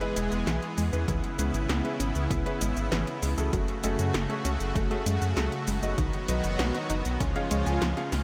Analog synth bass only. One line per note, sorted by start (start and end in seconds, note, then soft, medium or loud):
0.17 0.29 E1 loud
0.32 0.44 E1 medium
0.47 0.59 B1 loud
0.78 0.90 E2 medium
0.93 1.05 E2 medium
1.08 1.21 C#2 loud
1.39 1.51 C#2 medium
1.54 1.66 G#1 medium
1.69 1.82 C#2 loud
2.00 2.12 G#1 loud
2.15 2.28 C#2 medium
2.30 2.43 C#2 loud
2.61 2.74 G#1 loud
2.77 2.89 G#1 medium
2.92 3.04 G#1 loud
3.22 3.35 C#2 loud
3.38 3.50 C#2 medium
3.53 3.66 F#1 loud
3.84 3.96 F#1 medium
3.99 4.12 F#2 medium
4.14 4.27 F#1 loud
4.45 4.57 C#2 loud
4.60 4.73 F#1 medium
4.75 4.88 F#1 loud
5.06 5.19 F#2 loud
5.22 5.34 F#2 medium
5.37 5.49 C#2 loud
5.67 5.80 F#1 medium
5.82 5.95 F#1 medium
5.98 6.10 B1 loud
6.29 6.41 B1 loud
6.44 6.56 F#1 medium
6.59 6.72 B1 loud
6.90 7.02 F#1 loud
7.05 7.18 B1 medium
7.20 7.33 C#2 loud
7.51 7.64 C#2 loud
7.66 7.79 C#2 medium
7.82 7.94 C#2 loud
8.12 8.23 C#2 medium